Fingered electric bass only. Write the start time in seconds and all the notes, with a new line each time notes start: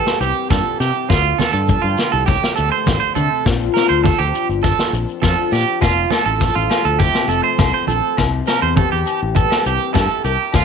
0.20 C2
0.50 G2
0.80 C3
1.10 D2
1.54 G2
1.84 G2
2.13 C2
2.58 D2
2.87 A1
3.16 D3
3.46 A#1
3.90 D2
4.20 D2
4.49 G1
4.93 A#1
5.23 F2
5.52 A#2
5.82 F1
6.26 A1
6.56 A1
6.85 D2
7.28 F1
7.59 C2
7.88 A#1
8.18 C2
8.62 E2
8.93 E2
9.22 A1
9.66 C2
9.95 G2
10.24 C2
10.53 D2